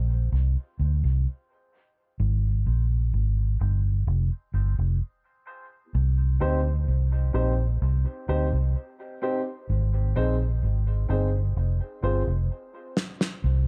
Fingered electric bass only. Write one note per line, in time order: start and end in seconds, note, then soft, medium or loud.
0.00 0.30 A#1 medium
0.32 0.55 C2 medium
0.79 1.02 D2 medium
1.04 1.25 C2 medium
2.20 2.64 G#1 medium
2.66 3.11 A#1 medium
3.13 3.58 G#1 medium
3.61 4.05 G1 medium
4.07 4.30 F1 medium
4.54 4.76 G1 medium
4.78 4.99 F1 medium
5.95 6.39 C2 loud
6.41 6.85 D2 medium
6.88 7.32 C2 medium
7.34 7.79 A#1 medium
7.82 8.04 C2 medium
8.29 8.51 D2 medium
8.53 8.74 C2 medium
9.69 10.13 G#1 loud
10.17 10.60 A#1 medium
10.63 11.07 G#1 medium
11.10 11.54 G1 loud
11.56 11.79 F1 medium
12.03 12.26 G1 medium
12.27 12.48 F1 medium
13.44 13.68 C2 loud